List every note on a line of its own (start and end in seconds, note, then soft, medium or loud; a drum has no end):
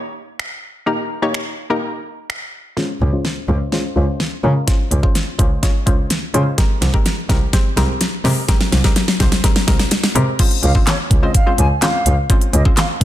0.00 0.43 A#3 medium
0.00 0.43 D#4 medium
0.00 0.43 G4 medium
0.00 0.43 C#5 loud
0.39 finger snap loud
0.86 1.10 A#3 medium
0.86 1.11 D#4 medium
0.86 1.11 G4 medium
0.86 1.11 A#4 medium
1.22 1.54 A#3 medium
1.22 1.54 D#4 medium
1.22 1.54 G4 medium
1.22 1.54 C#5 loud
1.34 finger snap loud
1.70 2.33 A#3 medium
1.70 2.34 D#4 medium
1.70 2.34 G4 medium
1.70 2.34 A#4 medium
2.30 finger snap loud
2.77 3.01 G#3 medium
2.77 3.01 C#4 medium
2.77 3.01 F4 medium
2.77 3.01 C5 medium
2.77 snare soft
3.01 3.09 C#2 medium
3.13 3.37 G#3 medium
3.13 3.37 C#4 medium
3.13 3.37 F4 medium
3.13 3.37 C5 loud
3.25 snare medium
3.48 3.56 C#2 medium
3.48 3.64 G#3 medium
3.48 3.64 C#4 medium
3.48 3.65 F4 medium
3.48 3.65 C5 medium
3.72 3.88 G#3 medium
3.72 3.88 C#4 medium
3.72 3.88 F4 medium
3.72 3.88 C5 medium
3.72 snare medium
3.96 4.04 C#2 medium
3.96 4.28 G#3 medium
3.96 4.28 C#4 medium
3.96 4.28 F4 medium
3.96 4.28 C5 medium
4.20 snare medium
4.43 4.52 C#3 medium
4.43 4.60 G#3 medium
4.43 4.60 C#4 medium
4.43 4.60 F4 medium
4.43 4.60 A#4 medium
4.67 4.91 G#3 medium
4.67 4.91 C#4 medium
4.67 4.91 F4 medium
4.67 4.91 C5 loud
4.67 kick loud
4.67 snare medium
4.67 closed hi-hat medium
4.91 4.99 C#2 medium
4.91 closed hi-hat medium
5.03 5.27 G#3 medium
5.03 5.27 C#4 medium
5.03 5.27 F4 medium
5.03 5.27 C5 loud
5.03 kick medium
5.15 snare medium
5.15 closed hi-hat medium
5.39 5.47 C#2 loud
5.39 5.55 G#3 medium
5.39 5.55 C#4 medium
5.39 5.55 F4 medium
5.39 5.55 C5 medium
5.39 kick loud
5.39 closed hi-hat medium
5.63 5.79 G#3 medium
5.63 5.79 C#4 medium
5.63 5.79 F4 medium
5.63 5.79 C#5 medium
5.63 kick loud
5.63 snare medium
5.63 closed hi-hat loud
5.86 5.95 C#2 medium
5.86 6.18 G#3 medium
5.86 6.18 C#4 medium
5.86 6.18 F4 medium
5.86 6.18 C5 loud
5.86 kick medium
5.86 closed hi-hat medium
6.10 snare medium
6.10 closed hi-hat medium
6.34 6.42 C#3 medium
6.34 6.50 G#3 medium
6.34 6.50 C#4 medium
6.34 6.50 F4 medium
6.34 6.50 C5 medium
6.34 closed hi-hat medium
6.58 6.82 G#3 medium
6.58 6.82 C4 medium
6.58 6.82 G4 medium
6.58 6.82 A#4 medium
6.58 kick loud
6.58 snare medium
6.58 closed hi-hat medium
6.82 6.90 C2 medium
6.82 snare medium
6.82 closed hi-hat medium
6.94 7.18 G#3 medium
6.94 7.18 C4 medium
6.94 7.18 G4 medium
6.94 7.18 A#4 medium
6.94 kick medium
7.06 snare medium
7.06 closed hi-hat medium
7.29 7.38 C2 loud
7.29 7.45 G#3 medium
7.29 7.45 C4 medium
7.29 7.45 G4 medium
7.29 7.46 A#4 medium
7.29 kick loud
7.29 snare medium
7.29 closed hi-hat medium
7.53 7.69 G#3 medium
7.53 7.69 C4 medium
7.53 7.69 G4 medium
7.53 7.69 C5 medium
7.53 kick loud
7.53 snare medium
7.53 closed hi-hat loud
7.77 7.85 C2 medium
7.77 8.09 G#3 medium
7.77 8.09 C4 medium
7.77 8.09 G4 medium
7.77 8.09 A#4 loud
7.77 snare medium
7.77 closed hi-hat medium
8.01 snare medium
8.01 closed hi-hat loud
8.25 8.33 C3 loud
8.25 8.41 G#3 medium
8.25 8.41 C4 medium
8.25 8.41 G4 medium
8.25 8.41 A#4 medium
8.25 snare loud
8.25 open hi-hat medium
8.48 8.72 G#3 medium
8.48 8.72 C4 medium
8.48 8.73 G4 medium
8.48 8.73 A#4 loud
8.48 kick loud
8.48 snare loud
8.48 closed hi-hat medium
8.61 snare loud
8.72 8.80 C2 medium
8.72 snare loud
8.72 closed hi-hat medium
8.84 9.08 G#3 medium
8.84 9.08 C4 medium
8.84 9.08 G4 medium
8.84 9.08 A#4 loud
8.84 kick medium
8.84 snare loud
8.96 snare loud
8.96 closed hi-hat medium
9.08 snare loud
9.20 9.28 C2 loud
9.20 9.36 G#3 medium
9.20 9.36 C4 medium
9.20 9.36 G4 medium
9.20 9.36 C5 loud
9.20 kick loud
9.20 snare loud
9.20 closed hi-hat medium
9.32 snare loud
9.32 closed hi-hat medium
9.44 9.60 G#3 medium
9.44 9.60 C4 medium
9.44 9.60 G4 medium
9.44 9.60 A#4 loud
9.44 kick loud
9.44 snare loud
9.44 closed hi-hat loud
9.56 snare loud
9.67 9.76 C2 medium
9.67 9.99 G#3 medium
9.67 9.99 C4 medium
9.67 10.00 G4 medium
9.67 10.00 A#4 loud
9.67 kick medium
9.67 snare loud
9.67 closed hi-hat medium
9.79 snare loud
9.91 snare loud
9.91 closed hi-hat loud
10.04 snare loud
10.15 10.23 C3 loud
10.15 10.31 G#3 medium
10.15 10.31 C4 medium
10.15 10.31 G4 medium
10.15 10.31 A#4 loud
10.15 closed hi-hat medium
10.39 10.63 G#3 medium
10.39 10.63 C4 medium
10.39 10.63 C#4 medium
10.39 10.63 F4 medium
10.39 10.63 C5 loud
10.39 kick loud
10.39 closed hi-hat loud
10.39 crash loud
10.51 closed hi-hat medium
10.63 10.71 C#2 loud
10.63 10.71 F5 medium
10.63 closed hi-hat medium
10.75 11.07 G#3 medium
10.75 11.07 C4 medium
10.75 11.07 C#4 medium
10.75 11.07 F4 medium
10.75 11.07 C5 medium
10.75 kick medium
10.87 10.95 C#5 medium
10.87 snare medium
10.87 clap loud
10.87 closed hi-hat medium
11.11 11.19 C#2 medium
11.11 kick loud
11.11 closed hi-hat medium
11.22 11.38 G#3 medium
11.22 11.38 C4 medium
11.22 11.39 C#4 medium
11.22 11.39 F4 medium
11.22 11.39 C5 medium
11.22 11.31 D#5 medium
11.35 11.52 F5 medium
11.35 kick loud
11.35 closed hi-hat loud
11.46 11.70 G#3 medium
11.46 11.70 C4 medium
11.46 11.70 C#4 medium
11.46 11.70 F4 medium
11.46 11.70 C5 medium
11.58 11.66 C#2 medium
11.58 11.67 G#5 medium
11.58 closed hi-hat medium
11.82 12.14 G#3 medium
11.82 12.14 C4 medium
11.82 12.14 C#4 medium
11.82 12.14 F4 medium
11.82 12.14 C5 medium
11.82 12.16 F5 medium
11.82 snare medium
11.82 clap loud
11.82 closed hi-hat loud
12.06 12.14 C#2 medium
12.06 closed hi-hat medium
12.30 12.53 G#3 medium
12.30 12.54 C4 medium
12.30 12.54 C#4 medium
12.30 12.54 F4 medium
12.30 12.54 C5 loud
12.30 kick loud
12.30 closed hi-hat medium
12.41 closed hi-hat medium
12.53 12.62 C#2 loud
12.53 12.62 D#5 medium
12.53 closed hi-hat medium
12.65 12.97 G#3 medium
12.65 12.97 C4 medium
12.65 12.97 C#4 medium
12.65 12.97 F4 medium
12.65 12.97 C5 medium
12.65 kick medium
12.77 12.86 F5 medium
12.77 snare medium
12.77 clap loud
12.77 closed hi-hat medium